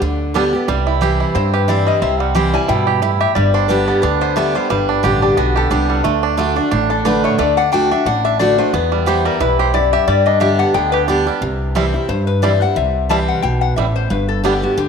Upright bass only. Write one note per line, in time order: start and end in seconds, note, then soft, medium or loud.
0.01 0.54 D2 medium
0.68 1.21 C2 medium
1.35 1.88 G2 medium
2.02 2.55 C2 loud
2.69 3.22 G2 medium
3.36 3.89 G1 medium
4.03 4.56 D2 medium
4.70 4.97 G1 loud
5.03 5.32 A1 medium
5.37 5.66 B1 medium
5.71 5.99 C2 medium
6.04 6.57 D2 medium
6.72 7.25 A1 medium
7.39 7.92 D2 loud
8.05 8.59 A1 medium
8.73 9.27 E2 loud
9.40 9.93 B1 medium
10.07 10.61 G2 loud
10.74 11.28 D2 medium
11.41 11.95 C2 loud
12.09 12.62 G2 medium
12.76 13.29 C2 medium
13.43 13.72 B1 medium
13.77 14.05 A1 medium
14.10 14.63 G1 loud
14.77 14.88 D2 medium